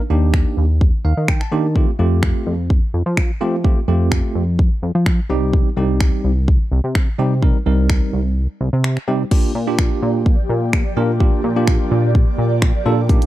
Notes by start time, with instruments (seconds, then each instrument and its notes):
0.10 analog synth bass D#2, tine electric piano A#3 D4 D#4 G4
0.34 finger snap, kick
0.57 analog synth bass D#2
0.81 kick
1.05 analog synth bass D#2, tine electric piano F5
1.17 analog synth bass D#3
1.28 tine electric piano G5, finger snap, kick
1.41 tine electric piano A5, finger snap
1.52 analog synth bass D#3, tine electric piano A#3 D4 D#4 G4
1.75 tine electric piano A3 C4 F4 G4, kick
1.99 analog synth bass F2, tine electric piano A3 C4 F4 G4
2.23 finger snap, kick
2.46 analog synth bass F2
2.70 kick
2.94 analog synth bass F2
3.06 analog synth bass F3
3.17 finger snap, kick
3.41 analog synth bass F3, tine electric piano A3 C4 F4 G4
3.64 tine electric piano A3 C4 F4 G4, kick
3.88 analog synth bass F2, tine electric piano A3 C4 F4 G4
4.12 finger snap, kick
4.35 analog synth bass F2
4.59 kick
4.83 analog synth bass F2
4.95 analog synth bass F3
5.06 finger snap, kick
5.30 analog synth bass C2, tine electric piano G3 C4 D#4 G4
5.53 kick
5.77 analog synth bass C2, tine electric piano G3 C4 D#4 G4
6.00 finger snap, kick
6.24 analog synth bass C2
6.48 kick
6.72 analog synth bass C2
6.84 analog synth bass C3
6.95 finger snap, kick
7.19 analog synth bass C3, tine electric piano G3 C4 D#4 G4
7.42 tine electric piano G3 C4 D#4 A#4, kick
7.66 analog synth bass C2, tine electric piano G3 C4 D#4 A#4
7.90 finger snap, kick
8.13 analog synth bass C2
8.61 analog synth bass C2
8.73 analog synth bass C3
8.84 finger snap
8.97 finger snap
9.08 analog synth bass C3, tine electric piano G3 C4 D#4 G4
9.31 analog synth pad F3 A#3 G4 D5, tine electric piano A#3 D4 F4 G4, kick, crash
9.55 analog synth bass A#2
9.67 tine electric piano A#3 D4 F4 G4
9.79 finger snap, kick
10.02 analog synth bass A#2
10.26 kick
10.49 analog synth bass A#2
10.73 finger snap, kick
10.97 analog synth bass A#2, tine electric piano A#3 D4 F4 A#4
11.20 tine electric piano A#3 D4 F4 G4, kick
11.44 analog synth bass A#2
11.56 tine electric piano A#3 D4 F4 G4
11.68 finger snap, kick
11.91 analog synth bass A#2
12.15 kick
12.38 analog synth bass A#2
12.62 finger snap, kick
12.85 analog synth bass A#2, tine electric piano A#3 D4 F4 A4
13.09 analog synth pad D#3 G4, tine electric piano A#3 D4 D#4 G4, kick, closed hi-hat
13.22 closed hi-hat